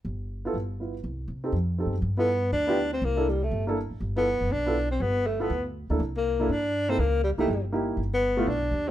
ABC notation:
X:1
M:4/4
L:1/8
Q:"Swing" 1/4=242
K:Gmix
V:1 name="Grand piano"
z3 [B,EFA] z2 [B,EFB] z | z3 [C_EGA] z2 [CEGA] z | z [B,EFA] z3 [B,EFG] z2 | z [_B,DEA] z3 [B,DEA] z2 |
z [B,EFA] z3 [B,EFA] z2 | z3 [B,EFA] z3 [_B,DEA] | z3 [_B,DEA] z3 [B,_E=EA] | z3 [^A,_E=EG] z2 [A,_E=EG]2 |
z3 [A,B,EF] z3 [_A,C] |]
V:2 name="Tenor saxophone"
z8 | z8 | z B,3 D3 C | _B,2 G, A,2 z3 |
z B,3 D3 C | B,2 A, B,2 z3 | z _B,3 D3 C | ^A,2 G, =A,2 z3 |
z B,3 D3 z |]
V:3 name="Upright bass" clef=bass
G,,,4 G,,,4 | C,,2 C,2 F,,2- (3F,, G,, ^F,, | G,,4 D,,4 | C,,4 G,,,3 z |
G,,,3 ^F,,, B,,,4 | G,,,4 D,,3 D,, | C,,4 G,,4 | ^C,,3 =C,, G,,,4 |
G,,,4 B,,,2 _E,,2 |]